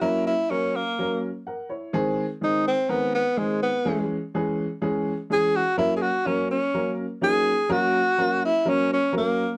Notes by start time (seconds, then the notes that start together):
0.01 F#3 A#3 C#4 E4 A#4
0.27 E4
0.50 F#3 A#3 C#4 A#4
0.76 A#3
0.99 F#3 A#3 C#4 A#4
1.47 A#4 F#5
1.69 E4 C#5
1.93 D#3 G#3 C4 G#4
2.41 D#3 G#3 C4 D#4 G#4
2.68 C4
2.89 D#3 G#3 B3 C4 A#4
3.15 B3
3.37 D#3 G#3 C4 G#4
3.62 B3
3.85 E3 G#3 C#4 G#4
4.34 E3 G#3 C#4 G#4
4.82 E3 G#3 C#4 G#4
5.30 E3 G#3 C#4 G#4
5.56 F#4
5.77 F#3 A#3 C#4 E4 A#4
5.96 G#4
6.02 F#4
6.26 F#3 A#3 C#4 A#4
6.51 C#4
6.74 F#3 A#3 C#4 A#4
7.21 F#3 A#3 C#4 D#4 G#4
7.69 F#3 A#3 C#4 F#4 A#4
8.18 F#3 A#3 C#4 A#4
8.45 E4
8.65 F#3 A#3 C#4 A#4
8.69 C#4
8.93 C#4
9.12 F#3 A#3 C#4 A#4
9.17 A#3